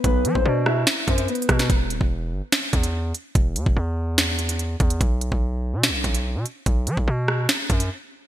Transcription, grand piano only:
\new Staff \with { instrumentName = "Grand piano" } { \time 4/4 \key b \phrygian \tempo 4 = 145 <b b'>8. <c' c''>16 <d' d''>8 <e' e''>4 <c' c''>8 <b b'>4 | r1 | r1 | r1 |
r1 | }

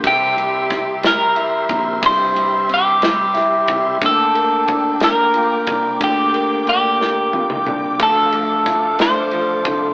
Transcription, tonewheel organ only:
\new Staff \with { instrumentName = "Tonewheel organ" } { \time 6/8 \key c \mixolydian \tempo 4. = 60 << { c'''2.~ | c'''2. | d'''2.~ | d'''2.~ |
d'''2. | } \\ { <g' e''>2.~ | <g' e''>2. | <bes g''>2.~ | <bes g''>2. |
<a' f''>2. | } >> }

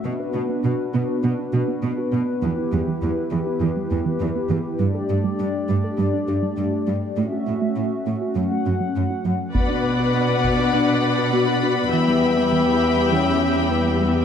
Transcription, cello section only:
\new Staff \with { instrumentName = "Cello section" } { \clef bass \time 4/4 \key b \minor \tempo 4 = 101 b,8 b,8 b,8 b,8 b,8 b,8 b,8 b,8 | e,8 e,8 e,8 e,8 e,8 e,8 e,8 e,8 | g,8 g,8 g,8 g,8 g,8 g,8 g,8 g,8 | a,8 a,8 a,8 a,8 fis,8 fis,8 fis,8 fis,8 |
b,1 | e,1 | }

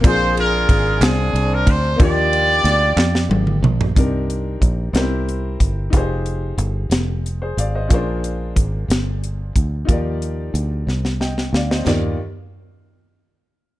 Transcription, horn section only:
\new Staff \with { instrumentName = "Horn section" } { \time 6/8 \key ees \major \tempo 4. = 61 << { c''8 bes'4 aes'8. bes'16 c''8 | d''2~ d''8 r8 | r2. | r2. |
r2. | r2. | r2. | } \\ { <f' aes'>8 <d' f'>4 <c' d'>4. | <f' g'>2~ <f' g'>8 r8 | r2. | r2. |
r2. | r2. | r2. | } >> }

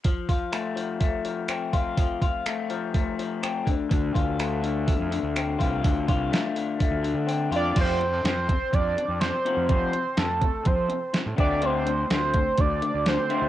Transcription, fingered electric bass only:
\new Staff \with { instrumentName = "Fingered electric bass" } { \clef bass \time 4/4 \key f \major \tempo 4 = 124 r1 | r1 | d,8 d,4.~ d,16 f,8 d,8. c,8 | d,8 c,8 r4 r16 d,8 d8. f,8 |
f,4 f,8 r8 f,8 r16 f,8 r8 f,16 | f8 r8 f,8 r8 f8 r8. a,16 d,8~ | d,4 d,8 r8 d,8 r16 d,8 r8 d,16 | }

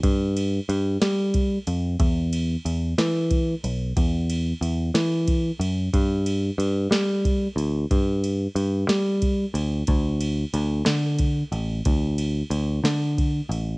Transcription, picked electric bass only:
\new Staff \with { instrumentName = "Picked electric bass" } { \clef bass \time 6/8 \key g \major \tempo 4. = 61 g,4 g,8 g4 f,8 | e,4 e,8 e4 b,,8 | e,4 e,8 e4 fis,8 | g,4 g,8 g4 d,8 |
g,4 g,8 g4 d,8 | d,4 d,8 d4 a,,8 | d,4 d,8 d4 a,,8 | }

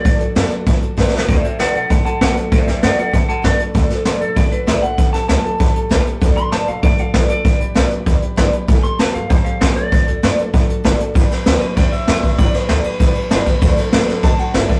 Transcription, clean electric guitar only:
\new Staff \with { instrumentName = "Clean electric guitar" } { \time 4/4 \key d \major \tempo 4 = 195 d''2~ d''8 r4. | <c'' e''>8 <c'' e''>8 <d'' fis''>8 <d'' fis''>8 <fis'' a''>8 <fis'' a''>8 fis''8 r8 | <c'' e''>8 <c'' e''>8 <d'' fis''>8 <d'' fis''>8 <fis'' a''>8 <fis'' a''>8 d''8 r8 | r4. a'8 d''8 b'8 e''8 fis''8~ |
fis''8 a''8 a''2. | r8 c'''8 a''8 f''8 d''8 f''8 d''8 d''8~ | d''2~ d''8 r4. | r8 c'''8 a''8 f''8 c''8 f''8 c''8 d''8~ |
d''2~ d''8 r4. | r4. b'8 d''8 e''4. | d''8 b'8 a'8 b'8 b'2~ | b'4 r4 a''8 fis''8 e''8 d''8 | }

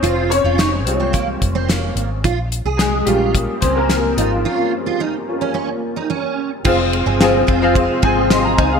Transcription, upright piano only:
\new Staff \with { instrumentName = "Upright piano" } { \time 4/4 \key f \minor \tempo 4 = 109 << { <c' c''>8 <des' des''>4 <c' c''>2 r8 | r4 <aes aes'>8 <g g'>4 <c' c''>16 <bes bes'>8. <f f'>8~ | <f f'>2. r4 | r2. <ees'' c'''>16 bes''16 <c'' aes''>16 <aes' f''>16 | } \\ { r4. <g aes f'>4. r4 | r4. <bes des' f'>2~ <bes des' f'>8 | <bes des' f'>4. <bes des' f'>8 r2 | <c' f' aes' c'' f''>8. r16 <c' f' aes' c'' aes''>8 r16 <c' f' aes' c'' f''>8 r16 <c' f' aes' c'' aes''>8. r8. | } >> }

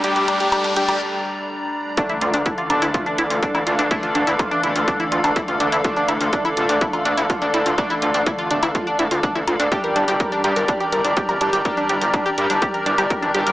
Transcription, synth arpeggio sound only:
\new Staff \with { instrumentName = "Synth arpeggio sound" } { \time 4/4 \key d \minor \tempo 4 = 124 g'16 g'16 d'16 g'16 g'16 d'16 g'16 g'16 r2 | d'16 e'16 f'16 d'16 e'16 f'16 d'16 e'16 f'16 d'16 e'16 f'16 d'16 e'16 f'16 d'16 | e'16 f'16 d'16 e'16 f'16 d'16 e'16 f'16 d'16 e'16 f'16 d'16 e'16 f'16 d'16 e'16 | f'16 d'16 e'16 f'16 d'16 e'16 f'16 d'16 e'16 f'16 d'16 e'16 f'16 d'16 e'16 f'16 |
d'16 e'16 f'16 d'16 e'16 f'16 d'16 e'16 f'16 d'16 e'16 f'16 d'16 e'16 f'16 d'16 | g'16 bes'16 d'16 g'16 bes'16 d'16 g'16 bes'16 d'16 g'16 bes'16 d'16 g'16 bes'16 d'16 g'16 | bes'16 d'16 g'16 bes'16 d'16 g'16 bes'16 d'16 g'16 bes'16 d'16 g'16 bes'16 d'16 g'16 bes'16 | }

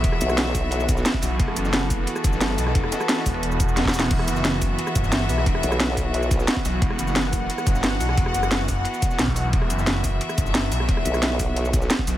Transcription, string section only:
\new Staff \with { instrumentName = "String section" } { \time 4/4 \key e \minor \tempo 4 = 177 << { e''1 | a'1~ | a'1 | e''1~ |
e''1 | fis''1~ | fis''1 | e''1~ |
e''1 | } \\ { <e b fis'>1~ | <e b fis'>1~ | <e b fis'>1~ | <e b fis'>1~ |
<e b fis'>1~ | <e b fis'>1~ | <e b fis'>1~ | <e b fis'>1~ |
<e b fis'>1 | } >> }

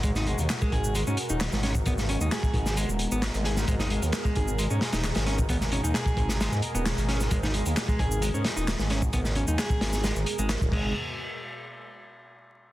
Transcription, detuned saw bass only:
\new Staff \with { instrumentName = "Detuned saw bass" } { \clef bass \time 4/4 \key gis \minor \tempo 4 = 132 gis,,8. dis,16 r8 gis,,8. gis,16 r16 dis,,8 gis,,8. | gis,,8. dis,16 r8 gis,,8. dis,,8 gis,,8 gis,,8. | gis,,8. dis,16 r8 gis,,8. gis,16 r16 dis,,8 gis,,8. | gis,,8. dis,16 r8 gis,,8. gis,16 r16 dis,,8 gis,,8. |
gis,,8. dis,16 r8 gis,,8. gis,16 r16 dis,,8 gis,,8. | gis,,8. dis,16 r8 gis,,8. gis,,16 r16 gis,,8 dis,,16 gis,,8 | r1 | }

